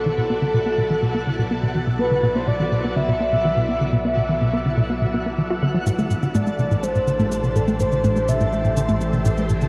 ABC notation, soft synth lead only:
X:1
M:4/4
L:1/16
Q:1/4=124
K:Bphr
V:1 name="Soft synth lead"
A12- A2 z2 | B3 c d4 e8- | e12 z4 | z4 d4 c6 A2 |
c4 e6 z6 |]